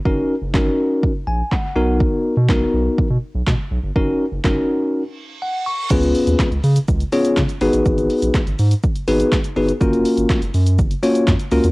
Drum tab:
CC |----------------|----------------|----------------|x---------------|
HH |----------------|----------------|----------------|-xox-xox-xox-xox|
SH |----------------|----------------|----------------|xxxxxxxxxxxxxxxx|
CP |----x-------x---|----x-------x---|----x-----------|----x-------x---|
SD |----o-------o---|----o-------o---|----o-----------|----o-------o---|
BD |o---o---o---o---|o---o---o---o---|o---o-----------|o---o---o---o---|

CC |----------------|----------------|
HH |-xox-xox-xox-xox|-xox-xox-xox-xox|
SH |xxxxxxxxxxxxxxxx|xxxxxxxxxxxxxxxx|
CP |----x-------x---|----x-------x---|
SD |----o-------o---|----o-------o---|
BD |o---o---o---o---|o---o---o---o---|